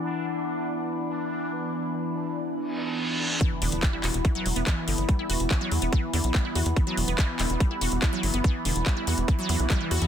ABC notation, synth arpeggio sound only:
X:1
M:4/4
L:1/16
Q:1/4=143
K:Clyd
V:1 name="Synth arpeggio sound" clef=bass
z16 | z16 | E, z D, z G, E F z E, F, z B, E, z D, z | G, E F z E, F, z B, E, z D, z G, E F z |
E, F, z B, E, z D, z G, E F z E, F, z B, | E, z D, z G, E F z E, F, F, z G, E, F E, |]